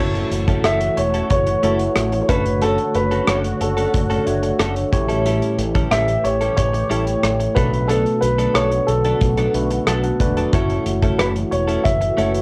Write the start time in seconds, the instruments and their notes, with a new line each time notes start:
Already playing: tine electric piano A3 E4
0.00 fretless electric bass F#1, analog synth pad E3 A3 F#4 C#5, clean electric guitar A3 C#4 E4 A4, tine electric piano F#4 C#5
0.15 closed hi-hat
0.31 fretless electric bass F#1, muted clean electric guitar stroke, closed hi-hat
0.48 clean electric guitar A3 C#4 E4 A4, kick, closed hi-hat
0.64 fretless electric bass F#1, clean electric guitar A3 C#4 E4 A4, grand piano E5, cross-stick, closed hi-hat
0.81 muted clean electric guitar stroke, closed hi-hat
0.97 fretless electric bass E1, grand piano C#5, muted clean electric guitar stroke, closed hi-hat
1.14 clean electric guitar A3 C#4 E4 A4, closed hi-hat
1.30 fretless electric bass F#1, grand piano C#5, muted clean electric guitar stroke, kick, closed hi-hat
1.47 muted clean electric guitar stroke, closed hi-hat
1.63 fretless electric bass F#1, tine electric piano A3 E4 F#4 A4, clean electric guitar A3 C#4 E4 A4, closed hi-hat
1.79 muted clean electric guitar stroke, closed hi-hat
1.96 fretless electric bass A1, cross-stick, closed hi-hat
2.12 muted clean electric guitar stroke, closed hi-hat
2.22 grand piano C#5
2.28 fretless electric bass F#1, analog synth pad D3 F#4, tine electric piano A3 D4 F#4 C#5, clean electric guitar A3 C#4 F#4 A4, grand piano B4, kick, closed hi-hat
2.45 muted clean electric guitar stroke, closed hi-hat
2.61 clean electric guitar A3 C#4 F#4 A4, grand piano A4, closed hi-hat
2.78 muted clean electric guitar stroke, closed hi-hat
2.95 fretless electric bass F#1, grand piano B4, muted clean electric guitar stroke, closed hi-hat
3.11 clean electric guitar A3 C#4 F#4 A4, closed hi-hat
3.27 fretless electric bass F#1, clean electric guitar A3 C#4 F#4 A4, grand piano C#5, cross-stick, closed hi-hat
3.44 muted clean electric guitar stroke, closed hi-hat
3.61 fretless electric bass F#1, grand piano A4, muted clean electric guitar stroke, closed hi-hat
3.77 clean electric guitar A3 C#4 F#4 A4, closed hi-hat
3.93 fretless electric bass F#1, muted clean electric guitar stroke, kick, closed hi-hat
4.10 clean electric guitar A3 C#4 F#4 A4, closed hi-hat
4.26 fretless electric bass F#1, tine electric piano A3 D4 F#4 C#5, muted clean electric guitar stroke, closed hi-hat
4.43 muted clean electric guitar stroke, closed hi-hat
4.59 fretless electric bass F#1, clean electric guitar A3 C#4 F#4 A4, cross-stick, closed hi-hat
4.76 muted clean electric guitar stroke, closed hi-hat
4.92 fretless electric bass A1, tine electric piano A2 A3 E4 G4 C#5, analog synth pad E3 G4, muted clean electric guitar stroke, kick, closed hi-hat
5.09 clean electric guitar G3 C#4 E4 A4, closed hi-hat
5.25 clean electric guitar G3 C#4 E4 A4, closed hi-hat
5.42 closed hi-hat
5.58 fretless electric bass A1, muted clean electric guitar stroke, closed hi-hat
5.75 clean electric guitar G3 C#4 E4 A4, kick, closed hi-hat
5.91 fretless electric bass A1, clean electric guitar G3 C#4 E4 A4, grand piano E5, cross-stick, closed hi-hat
6.08 muted clean electric guitar stroke, closed hi-hat
6.24 fretless electric bass A1, grand piano C#5, muted clean electric guitar stroke, closed hi-hat
6.41 clean electric guitar G3 C#4 E4 A4, closed hi-hat
6.57 fretless electric bass A1, grand piano C#5, muted clean electric guitar stroke, kick, closed hi-hat
6.74 muted clean electric guitar stroke, closed hi-hat
6.90 fretless electric bass A1, clean electric guitar G3 C#4 E4 A4, tine electric piano A3 E4 G4 C#5, closed hi-hat
7.06 muted clean electric guitar stroke, closed hi-hat
7.23 fretless electric bass A1, cross-stick, closed hi-hat
7.40 muted clean electric guitar stroke, closed hi-hat
7.55 fretless electric bass B1, tine electric piano B2 A3 D4 F#4 B4, analog synth pad D3 B3 F#4, clean electric guitar F#3 B3 D4 A4, grand piano B4, kick, closed hi-hat
7.73 muted clean electric guitar stroke, closed hi-hat
7.88 clean electric guitar F#3 B3 D4 A4, grand piano A4, closed hi-hat
8.05 muted clean electric guitar stroke, closed hi-hat
8.21 fretless electric bass B1, grand piano B4, muted clean electric guitar stroke, closed hi-hat
8.38 clean electric guitar F#3 B3 D4 A4, closed hi-hat
8.54 fretless electric bass B1, clean electric guitar F#3 B3 D4 A4, grand piano C#5, cross-stick, closed hi-hat
8.72 muted clean electric guitar stroke, closed hi-hat
8.87 fretless electric bass B1, grand piano A4, muted clean electric guitar stroke, closed hi-hat
9.05 clean electric guitar F#3 B3 D4 A4, closed hi-hat
9.21 fretless electric bass B1, muted clean electric guitar stroke, kick, closed hi-hat
9.37 clean electric guitar F#3 B3 D4 A4, closed hi-hat
9.54 fretless electric bass B1, tine electric piano A3 D4 F#4 B4, muted clean electric guitar stroke, closed hi-hat
9.70 muted clean electric guitar stroke, closed hi-hat
9.87 fretless electric bass B1, clean electric guitar F#3 B3 D4 A4, tine electric piano A5, cross-stick, closed hi-hat
10.04 tine electric piano F#5, muted clean electric guitar stroke, closed hi-hat
10.20 fretless electric bass E1, tine electric piano A3 D4 F#4 B4 D5, muted clean electric guitar stroke, kick, closed hi-hat
10.37 clean electric guitar F#3 B3 D4 A4, closed hi-hat
10.53 fretless electric bass F#1, analog synth pad E3 A3 E4, tine electric piano A3 E4 F#4 C#5, clean electric guitar A3 C#4 E4 A4, kick, closed hi-hat
10.70 closed hi-hat
10.86 fretless electric bass F#1, muted clean electric guitar stroke, closed hi-hat
11.03 clean electric guitar A3 C#4 E4 A4, kick, closed hi-hat
11.18 fretless electric bass F#1, clean electric guitar A3 C#4 E4 A4, grand piano B4, cross-stick, closed hi-hat
11.36 muted clean electric guitar stroke, closed hi-hat
11.51 fretless electric bass E1, grand piano C#5, muted clean electric guitar stroke, closed hi-hat
11.68 clean electric guitar A3 C#4 E4 A4, closed hi-hat
11.84 fretless electric bass F#1, grand piano E5, kick, closed hi-hat
12.01 muted clean electric guitar stroke, closed hi-hat
12.17 fretless electric bass F#1, tine electric piano A3 E4 F#4 C#5, clean electric guitar A3 C#4 E4 A4, closed hi-hat
12.34 muted clean electric guitar stroke, closed hi-hat